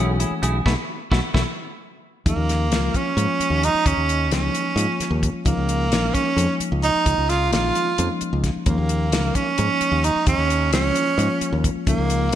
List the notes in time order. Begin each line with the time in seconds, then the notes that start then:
Already playing: B1 E3 G#3 A3 C#4 E4 F#4 G#4
0.20 C#4 E4 G#4, closed hi-hat
0.31 muted fingered electric bass stroke
0.42 B1 A3 C#4 E4 G#4, closed hi-hat
0.66 B1 F#3 A3 B3 E4 F#4, kick, snare
1.11 B1 F#3 A3 B3 E4 F#4, kick, snare
1.34 B1 F#3 A3 B3 E4 F#4, kick, snare
2.25 D#2 F3 G#3 A#3 C#4 D#4, kick, closed hi-hat
2.36 D#2
2.49 snare, closed hi-hat
2.71 C#2 F3 G#3 A#3 C#4 F4, snare, closed hi-hat
2.94 C#4, kick, closed hi-hat
3.17 G#2 F3 G#3 A#3 C#4 F4, closed hi-hat
3.40 muted fingered electric bass stroke, closed hi-hat
3.50 D#2
3.63 D#4, closed hi-hat
3.74 muted fingered electric bass stroke
3.86 D#2 C#4, kick, closed hi-hat
3.97 D#2
4.09 closed hi-hat
4.31 C#2 F3 G#3 A#3 C#4 D#4, snare, closed hi-hat
4.54 closed hi-hat
4.76 G#2 F3 G#3 A#3 C#4 F4, closed hi-hat
5.00 muted fingered electric bass stroke, snare, closed hi-hat
5.11 D#2
5.23 kick, closed hi-hat
5.33 muted fingered electric bass stroke
5.45 C#2 F3 G#3 A#3 C#4 D#4, kick, closed hi-hat
5.57 C#2
5.69 closed hi-hat
5.92 A#1 F3 G#3 A#3 C#4 D#4, snare, closed hi-hat
6.14 C#4, kick, closed hi-hat
6.37 F2 F3 G#3 A#3 C#4 D#4, closed hi-hat
6.60 muted fingered electric bass stroke, closed hi-hat
6.72 C#2
6.83 D#4, closed hi-hat
6.95 muted fingered electric bass stroke
7.06 C#2, kick, closed hi-hat
7.18 C#2
7.29 F4, snare, closed hi-hat
7.51 A#1 F3 G#3 A#3 C#4 D#4 F4, snare, closed hi-hat
7.75 closed hi-hat
7.98 F2 F3 G#3 A#3 C#4 D#4, closed hi-hat
8.21 muted fingered electric bass stroke, closed hi-hat
8.33 C#2
8.44 kick, snare, closed hi-hat
8.56 muted fingered electric bass stroke
8.66 D#2 F3 G#3 A#3 C#4 D#4, kick, closed hi-hat
8.78 D#2
8.89 closed hi-hat
9.12 C#2 F3 G#3 A#3 C#4 D#4, snare, closed hi-hat
9.35 C#4, kick, closed hi-hat
9.58 G#2 F3 G#3 A#3 C#4 D#4, closed hi-hat
9.81 muted fingered electric bass stroke, closed hi-hat
9.92 D#2
10.04 D#4, closed hi-hat
10.15 muted fingered electric bass stroke
10.26 D#2 C#4, kick, closed hi-hat
10.38 D#2
10.50 closed hi-hat
10.72 C#2 F3 G#3 A#3 C#4 F4, snare, closed hi-hat
10.96 closed hi-hat
11.18 G#2 F3 G#3 A#3 C#4 F4, closed hi-hat
11.41 muted fingered electric bass stroke, closed hi-hat
11.53 D#2
11.64 kick, closed hi-hat
11.76 muted fingered electric bass stroke
11.87 C#2 F3 G#3 A#3 C#4 D#4, kick, closed hi-hat
11.98 C#2
12.10 closed hi-hat